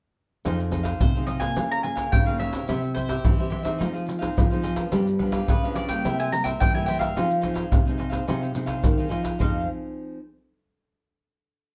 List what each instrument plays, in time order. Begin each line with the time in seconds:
0.45 nylon-string guitar F2 F3 C4 D#4 G#4, cavaquinho D#4 G#4 C5 F5, pandeiro, maracas, surdo
0.60 muted cavaquinho stroke, pandeiro, maracas
0.71 nylon-string guitar C4 D#4 G#4, cavaquinho D#4 G#4 C5 F5, pandeiro, maracas, surdo
0.83 cavaquinho G#4 C5 F5, pandeiro, maracas, surdo
1.01 nylon-string guitar C3, mandolin C5, pandeiro, maracas, surdo
1.15 nylon-string guitar C4 D#4 G#4, cavaquinho G#4 C5 F5, pandeiro, maracas
1.26 cavaquinho D#4 G#4 C5 F5, mandolin D#5, pandeiro, maracas
1.39 nylon-string guitar A#3 F4 G#4, cavaquinho G#4 C5 F5, mandolin G#5, pandeiro, maracas, surdo
1.56 nylon-string guitar C#3, cavaquinho F4 A#4 C#5 F5, pandeiro, maracas, surdo
1.71 cavaquinho A#4 C#5 F5, mandolin A#5, pandeiro, maracas
1.83 nylon-string guitar A#3 F4 G#4, mandolin G#5, muted cavaquinho stroke, pandeiro, maracas
1.95 cavaquinho A#4 C#5 F5, pandeiro, maracas, surdo
2.12 nylon-string guitar G#2 C#3, mandolin G5, pandeiro, maracas, surdo
2.26 nylon-string guitar A#3 F4 G#4, cavaquinho A#4 C#5 F5, mandolin F5, pandeiro, maracas
2.38 cavaquinho F4 A#4 C#5 F5, mandolin E5, pandeiro
2.51 nylon-string guitar C4 E4 G4, cavaquinho A#4 C#5 F5, pandeiro, maracas, surdo
2.68 nylon-string guitar C3, cavaquinho E4 G4 C5 E5, pandeiro, maracas, surdo
2.83 muted cavaquinho stroke, pandeiro, maracas
2.94 cavaquinho E4 G4 C5 E5, mandolin C5, pandeiro, maracas, surdo
3.08 nylon-string guitar C4 E4 G4, cavaquinho G4 C5 E5, pandeiro, maracas, surdo
3.24 nylon-string guitar G2 E3, pandeiro, maracas, surdo
3.38 nylon-string guitar C4 E4 G4, cavaquinho G4 C5 E5, pandeiro, maracas
3.50 cavaquinho E4 G4 C5 E5, pandeiro
3.63 nylon-string guitar C4 D#4 G#4, cavaquinho G4 C5 E5, pandeiro, maracas, surdo
3.78 nylon-string guitar F3, cavaquinho D#4 G#4 C5 F5, pandeiro, maracas, surdo
3.93 cavaquinho G#4 C5 F5, pandeiro, maracas
4.06 muted cavaquinho stroke, pandeiro, maracas
4.19 nylon-string guitar C4 D#4 G#4, cavaquinho G#4 C5 F5, pandeiro, maracas, surdo
4.37 nylon-string guitar C3 F3, pandeiro, maracas, surdo
4.50 nylon-string guitar C4 D#4 G#4, cavaquinho G#4 C5 F5, pandeiro, maracas
4.62 cavaquinho D#4 G#4 C5 F5, pandeiro, maracas
4.75 nylon-string guitar F3 B3 D4, cavaquinho G#4 C5 F5, pandeiro, maracas, surdo
4.92 nylon-string guitar G2 G3, cavaquinho D4 G4 B4 F5, pandeiro, maracas, surdo
5.07 muted cavaquinho stroke, pandeiro, maracas
5.18 nylon-string guitar F3 B3 D4, cavaquinho D4 G4 B4 F5, pandeiro, surdo
5.32 cavaquinho G4 B4 F5, pandeiro, maracas, surdo
5.48 nylon-string guitar C#3, mandolin B4, pandeiro, maracas, surdo
5.63 nylon-string guitar F3 B3 D4, cavaquinho G4 B4 F5, pandeiro, maracas
5.75 cavaquinho D4 G4 B4 F5, mandolin D5, pandeiro, maracas
5.88 nylon-string guitar G3 A#3 E4, cavaquinho G4 B4 F5, mandolin G5, pandeiro, maracas, surdo
6.04 nylon-string guitar C3, cavaquinho E4 A#4 C5 E5, pandeiro, maracas, surdo
6.19 cavaquinho A#4 C5 E5, mandolin G#5, pandeiro, maracas
6.31 nylon-string guitar G3 A#3 E4, mandolin A#5, muted cavaquinho stroke, pandeiro, maracas
6.44 cavaquinho A#4 C5 E5, mandolin G5, pandeiro, maracas, surdo
6.60 nylon-string guitar G2 E3, mandolin G5, pandeiro, maracas, surdo
6.75 nylon-string guitar G3 A#3 E4, cavaquinho A#4 C5 E5, mandolin G#5, pandeiro, maracas
6.86 cavaquinho E4 A#4 C5 E5, mandolin G5, pandeiro, maracas
6.99 cavaquinho A#4 C5 E5, mandolin F5, pandeiro, maracas, surdo
7.16 nylon-string guitar F3 C4 D#4 G#4, cavaquinho D#4 G#4 C5 F5, pandeiro, maracas, surdo
7.30 muted cavaquinho stroke, pandeiro, maracas
7.41 nylon-string guitar C4, cavaquinho D#4 G#4 C5 F5, pandeiro, maracas, surdo
7.45 nylon-string guitar D#4 G#4
7.54 cavaquinho G#4 C5 F5, pandeiro, maracas, surdo
7.72 nylon-string guitar C3, pandeiro, maracas, surdo
7.86 nylon-string guitar C4 D#4 G#4, cavaquinho G#4 C5 F5, pandeiro, maracas
7.98 cavaquinho D#4 G#4 C5 F5, pandeiro
8.10 nylon-string guitar C4 D#4, cavaquinho G#4 C5 F5, pandeiro, maracas, surdo
8.14 nylon-string guitar G#4
8.27 nylon-string guitar C3 F3 C4 D#4 G#4, cavaquinho D#4 G#4 C5 F5, pandeiro, maracas, surdo
8.41 cavaquinho G#4 C5 F5, pandeiro, maracas
8.54 nylon-string guitar C3 C4 D#4 G#4, muted cavaquinho stroke, pandeiro, maracas
8.66 cavaquinho G#4 C5 F5, pandeiro, maracas, surdo
8.84 nylon-string guitar C3 D#3, pandeiro, maracas, surdo
8.98 nylon-string guitar C4 D#4 G#4, cavaquinho G#4 C5 F5, pandeiro, maracas
9.09 nylon-string guitar F3, cavaquinho D#4 G#4 C5 F5, pandeiro, maracas
9.23 cavaquinho G#4 C5 F5, pandeiro, maracas, surdo
9.39 nylon-string guitar F2 F3 C4 D#4 G#4, cavaquinho D#4 G#4 C5 F5, mandolin F5, surdo